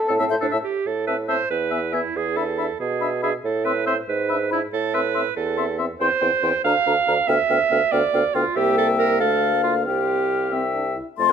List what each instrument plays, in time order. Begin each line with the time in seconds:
Already playing: french horn A4
0.07 bassoon A2, clarinet C4, oboe A4, flute C5
0.18 bassoon A2, clarinet C4, oboe E5, flute A5
0.29 bassoon A2, oboe C5, flute E5
0.41 bassoon A2, clarinet D4, oboe A4, flute C5
0.51 bassoon A2, oboe E5, flute A5
0.64 clarinet G4
0.86 bassoon A2, clarinet A4
1.07 french horn C4, clarinet B4, oboe E5, flute A5
1.28 french horn C4, clarinet C5, oboe E5, flute A5
1.50 bassoon E2, clarinet B4
1.71 french horn B3, oboe E5, flute G#5
1.92 french horn B3, clarinet E4, oboe E5, flute G#5
2.16 bassoon E2, clarinet G#4
2.36 french horn D4, clarinet A4, oboe E5, flute B5
2.58 french horn D4, oboe E5, flute B5
2.80 bassoon B2, clarinet G#4
3.00 french horn D4, oboe E5, flute B5
3.22 french horn D4, clarinet G#4, oboe E5, flute B5
3.44 bassoon A2, clarinet A4
3.65 french horn C4, clarinet B4, oboe E5, flute C6
3.85 french horn C4, clarinet C5, oboe E5, flute C6
4.09 bassoon G#2, clarinet B4
4.29 french horn D4, oboe E5, flute B5
4.51 french horn D4, clarinet E4, oboe E5, flute B5
4.73 bassoon A2, clarinet A4
4.94 french horn C4, clarinet B4, oboe E5, flute C6
5.14 french horn C4, oboe E5, flute C6
5.36 bassoon E2, clarinet A4
5.57 french horn C4, oboe E5, flute C6
5.78 french horn C4, oboe E5, flute C6
6.00 bassoon E2, french horn C4, clarinet C5, oboe G5, flute C6
6.21 bassoon E2, french horn C4, oboe G5, flute C6
6.42 bassoon E2, french horn C4, oboe G5, flute C6
6.64 bassoon D2, french horn D4, clarinet F5, oboe F5, flute A#5
6.86 bassoon D2, french horn D4, oboe F5, flute A#5
7.07 bassoon D2, french horn D4, oboe F5, flute A#5
7.27 bassoon D2, french horn B3, clarinet E5, oboe F5, flute G5
7.49 bassoon D2, french horn B3, oboe F5, flute G5
7.70 bassoon D2, french horn B3, oboe F5, flute G5
7.91 bassoon D2, french horn B3, clarinet D5, oboe F5, flute G5
8.13 bassoon D2, french horn B3, oboe F5, flute G5
8.34 bassoon D2, french horn B3, clarinet F4, oboe F5, flute G5
8.56 bassoon C2, french horn A#3, clarinet G4, oboe E5, flute G5
8.78 clarinet A4
8.99 clarinet A#4
9.20 bassoon D2, french horn A3, clarinet A4, flute F5, oboe F5
9.53 french horn A#3
9.63 clarinet F4
9.85 bassoon C2, french horn C4, clarinet G4, oboe F5, flute G5
10.52 french horn C4, oboe E5, flute G5
10.74 french horn D4
10.96 french horn E4
11.18 bassoon F2, french horn A3, clarinet A4, oboe A5, flute C6